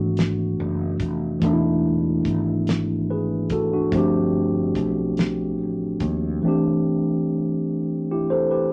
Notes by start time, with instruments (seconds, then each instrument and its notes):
Already playing: fretless electric bass G#1, tine electric piano E3 A3 B3 D4 F#4
0.17 snare, closed hi-hat
0.60 fretless electric bass F#1
1.00 fretless electric bass F1, kick, closed hi-hat
1.40 fretless electric bass E1, tine electric piano E3 A3 B3, kick, closed hi-hat
1.45 tine electric piano D4 D#4
1.53 tine electric piano E4
2.25 fretless electric bass G#1, kick, closed hi-hat
2.67 snare, closed hi-hat
3.10 tine electric piano G#4 B4
3.50 tine electric piano F#4 A4, kick, closed hi-hat
3.73 tine electric piano D4 F#4
3.90 fretless electric bass G1, tine electric piano F3 A3 C4, kick, closed hi-hat
3.96 tine electric piano D4 G4
4.75 fretless electric bass B1, kick, closed hi-hat
5.17 snare, closed hi-hat
5.62 fretless electric bass A1
6.00 fretless electric bass D#2, kick, closed hi-hat
6.42 tine electric piano E3 A3 C4
6.46 tine electric piano D4 G4
8.11 tine electric piano E4 G4
8.30 tine electric piano A4 C5
8.51 tine electric piano G4 B4